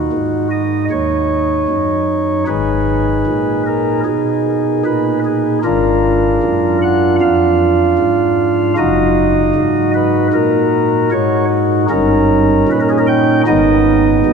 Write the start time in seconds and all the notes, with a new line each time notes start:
Already playing: D#2 D#3 D#4 F#4
0.13 G#2
0.51 D#5
0.91 D#2 C#5
1.69 F#2
2.47 G#1 G#2 D#4 G#4 B4
3.27 A#2
3.66 A#4
4.06 B2 G#4
4.85 A#2 B4
5.25 G#4
5.64 G#1 G#2 D4 F4 A#4
6.43 F#2
6.82 F#5
7.21 F2 F5
7.99 G#2
8.78 F#1 F#2 D#4 F#4 D#5
9.55 G#2
9.94 B4
10.33 A#2 A#4
11.12 G#2 C#5
11.90 G1 G2 C#4 D#4 A#4
12.68 A#2 B4
12.81 A#4
12.90 G#4
12.99 A#4
13.07 G5
13.47 G#1 G#2 B3 D#4 D#5
14.26 B2